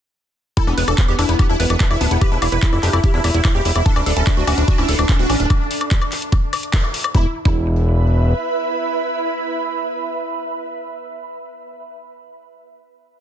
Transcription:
0.57 synth arpeggio sound E4, supersaw synth A4, ambient pad B4, kick, closed hi-hat
0.67 analog synth bass E1, supersaw synth B3, synth arpeggio sound D4, high woodblock
0.74 analog synth bass E1, supersaw synth B3, synth arpeggio sound B4, ambient pad E5, open hi-hat
0.88 analog synth bass E1, synth arpeggio sound D4, supersaw synth A4, closed hi-hat, high woodblock
0.98 supersaw synth B3, kick, clap, closed hi-hat
1.08 analog synth bass E1, supersaw synth B3, synth arpeggio sound G4
1.19 analog synth bass E1, synth arpeggio sound D4, supersaw synth E4, ambient pad B5, open hi-hat, high woodblock
1.29 analog synth bass E1, supersaw synth B3, synth arpeggio sound E4, closed hi-hat
1.39 supersaw synth B3, synth arpeggio sound G4, kick, closed hi-hat, high woodblock
1.49 analog synth bass E1, synth arpeggio sound D4, supersaw synth E4
1.60 analog synth bass E1, supersaw synth B3, synth arpeggio sound B4, open hi-hat
1.70 analog synth bass E1, supersaw synth B3, closed hi-hat, high woodblock
1.80 supersaw synth B3, synth arpeggio sound D4, kick, clap, closed hi-hat
1.91 analog synth bass E1, supersaw synth E4, high woodblock
2.01 analog synth bass D1, supersaw synth B3, synth arpeggio sound D4, open hi-hat
2.11 analog synth bass E1, supersaw synth B3, synth arpeggio sound E4, closed hi-hat
2.21 synth arpeggio sound G4, supersaw synth B4, kick, closed hi-hat, high woodblock
2.32 analog synth bass E1, synth arpeggio sound D4, supersaw synth E4
2.42 analog synth bass E1, supersaw synth E4, synth arpeggio sound F5, open hi-hat, high woodblock
2.52 analog synth bass E1, synth arpeggio sound E4, supersaw synth B4, closed hi-hat
2.62 supersaw synth E4, synth arpeggio sound E4, kick, clap, closed hi-hat
2.73 analog synth bass F1, supersaw synth E4, high woodblock
2.83 analog synth bass F1, synth arpeggio sound D4, supersaw synth G4, clap, open hi-hat
2.93 analog synth bass F1, supersaw synth E4, synth arpeggio sound E4, closed hi-hat, high woodblock
3.04 supersaw synth E4, synth arpeggio sound G4, kick, closed hi-hat
3.14 analog synth bass E1, synth arpeggio sound D4, supersaw synth E4
3.24 analog synth bass E1, supersaw synth E4, synth arpeggio sound E5, open hi-hat, high woodblock
3.34 analog synth bass E1, supersaw synth E4, synth arpeggio sound E4, closed hi-hat
3.45 supersaw synth E4, synth arpeggio sound E4, kick, clap, closed hi-hat, high woodblock
3.55 analog synth bass E1, supersaw synth G4, synth arpeggio sound G4
3.65 analog synth bass E1, supersaw synth E4, open hi-hat
3.76 analog synth bass E1, supersaw synth E4, synth arpeggio sound E4, closed hi-hat, high woodblock
3.86 synth arpeggio sound D4, synth drone D4, ambient pad A4, supersaw synth A4, kick, closed hi-hat
3.96 analog synth bass D1, synth arpeggio sound C#4, supersaw synth D4, high woodblock
4.06 analog synth bass D1, supersaw synth D4, synth arpeggio sound A4, open hi-hat
4.15 analog synth bass D1, synth arpeggio sound C#4, supersaw synth A4, ambient pad D5, closed hi-hat
4.27 supersaw synth D4, kick, clap, closed hi-hat, high woodblock
4.37 analog synth bass D1, supersaw synth D4, synth arpeggio sound F#4
4.47 analog synth bass D1, synth arpeggio sound C#4, supersaw synth F#4, open hi-hat, high woodblock
4.58 analog synth bass D1, supersaw synth D4, synth arpeggio sound D4, ambient pad A5, closed hi-hat
4.68 supersaw synth D4, synth arpeggio sound F#4, kick, closed hi-hat
4.78 analog synth bass D1, synth arpeggio sound C#4, supersaw synth E4, high woodblock
4.89 analog synth bass D1, supersaw synth D4, synth arpeggio sound A4, open hi-hat
4.99 analog synth bass D1, supersaw synth D4, closed hi-hat, high woodblock
5.09 synth arpeggio sound C#4, supersaw synth D4, kick, clap, closed hi-hat
5.19 analog synth bass D1, supersaw synth F#4
5.30 analog synth bass A1, synth arpeggio sound C#4, supersaw synth D4, open hi-hat, high woodblock
5.40 analog synth bass D1, supersaw synth D4, synth arpeggio sound D4, closed hi-hat
5.50 kick, closed hi-hat, high woodblock
5.71 open hi-hat
5.81 closed hi-hat, high woodblock
5.91 kick, clap, closed hi-hat
6.02 high woodblock
6.12 clap, open hi-hat
6.22 closed hi-hat
6.32 kick, closed hi-hat, high woodblock
6.53 open hi-hat, high woodblock
6.63 closed hi-hat
6.73 kick, clap, closed hi-hat
6.84 high woodblock
6.94 open hi-hat
7.04 closed hi-hat, high woodblock
7.14 analog synth bass E1, supersaw synth E4, synth arpeggio sound E4, ambient pad B4, kick
7.21 ambient pad E5
7.27 ambient pad B5
7.45 analog synth bass E1, supersaw synth E4, synth arpeggio sound E4, kick

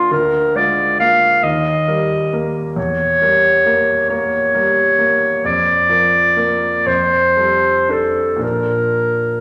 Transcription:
Already playing: grand piano A#3 D4 F4, clarinet F4
0.11 grand piano D2, clarinet A#4
0.55 grand piano G#3 F4, clarinet D5
1.00 grand piano A#3 F4, clarinet F5
1.43 grand piano D#2, clarinet D#5
1.88 grand piano G3 A#4
2.33 grand piano A#3 A#4
2.76 grand piano E2, clarinet C#5
3.22 grand piano G3 A#4
3.66 grand piano A#3 A#4
4.10 grand piano A#3 A#4, clarinet C#5
4.55 grand piano G3 A#4
4.99 grand piano A#3 A#4
5.44 grand piano F2, clarinet D5
5.89 grand piano F3 A#4
6.37 grand piano A#3 A#4
6.86 grand piano F2, clarinet C5
7.37 grand piano G3 A4
7.88 grand piano D4 A4, clarinet A4
8.36 grand piano A#2 F3 D4 A#4
8.43 clarinet A#4

